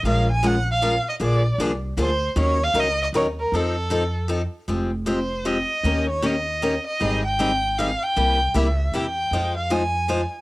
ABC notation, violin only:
X:1
M:3/4
L:1/8
Q:"Swing" 1/4=155
K:Bbm
V:1 name="Violin"
f a g f2 e | =d2 z2 c2 | d f e e d B | =A4 z2 |
[K:Fm] z2 c2 e2- | e d e3 e- | e g3 f g- | g2 =e2 g2- |
g f a3 z |]